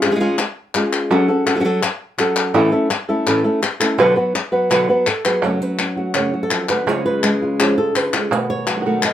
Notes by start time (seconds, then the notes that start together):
0.02 C#4 F4 G#4, clap
0.06 G#3 F4 G#4
0.11 G#3 C#4 F4 G#4
0.15 G#3 C#4 F4 G#4
0.20 C#3 G#3 C#4 F4 G#4
0.38 muted nylon-string guitar stroke, clap
0.75 G#3 C#4 F4 G#4, clap
0.93 clap
1.10 F#3 C#4 F#4 A4
1.28 C#4 F#4 A4
1.46 C#4 F#4 A4, clap
1.55 F#3 C#4 F#4 A4
1.60 F#3 C#4 F#4 A4
1.64 F#3 C#4 F#4 A4
1.83 muted nylon-string guitar stroke, clap
2.18 F#3 C#4 F#4 A4, clap
2.36 clap
2.54 A2 E3 A3 C#4 E4 A4
2.72 A3 C#4 E4 A4
2.90 muted nylon-string guitar stroke, clap
3.09 A3 C#4 E4 A4
3.26 A2 E3 A3 C#4 E4 A4, clap
3.44 A3 C#4 E4 A4
3.62 muted nylon-string guitar stroke, clap
3.80 A3 C#4 E4 A4, clap
3.98 B2 D3 F#3 B3 F#4 B4
4.16 F#3 B3 F#4 B4
4.35 muted nylon-string guitar stroke, clap
4.52 F#3 B3 F#4 B4
4.70 B2 D3 F#3 B3 F#4 B4, clap
4.89 F#3 B3 F#4 B4
5.07 A4, muted nylon-string guitar stroke, clap
5.25 F#3 B3 F#4 G#4 B4, clap
5.43 F#2 C#3 F#3 A3 C#4 F#4 A4
5.60 F#3 A3 C#4 F#4 B4
5.79 C#4, muted nylon-string guitar stroke, clap
5.96 F#3 A3 C#4 F#4
6.14 F#2 C#3 F#3 A3 C#4 F#4 C#5, clap
6.32 F#3 A3 C#4 F#4
6.43 A4
6.51 F3, muted nylon-string guitar stroke, clap
6.69 D3 F#3 A3 C#4 F#4 B4, clap
6.86 C#3 F3 G#3 C#4 F4 C#5, clap
7.05 G#3 C#4 F4 B4
7.23 G#3, muted nylon-string guitar stroke, clap
7.41 G#3 C#4 F4
7.60 C#3 F3 G#3 C#4 F4 G#4, clap
7.78 G#3 F4 A4
7.95 D3 B4, muted nylon-string guitar stroke, clap
8.13 C#3 G#3 C#4 F4 A4, clap
8.31 B2 D#3 A3 B3 F#4 B4
8.50 C#5
8.66 F#3 A3 B3 F#4, clap
8.76 D#3 A3 B3 F#4
8.81 D#3 A3 B3 F#4
8.85 B2 D#3 A3 B3 F#4 A4
9.03 D#5, muted nylon-string guitar stroke, clap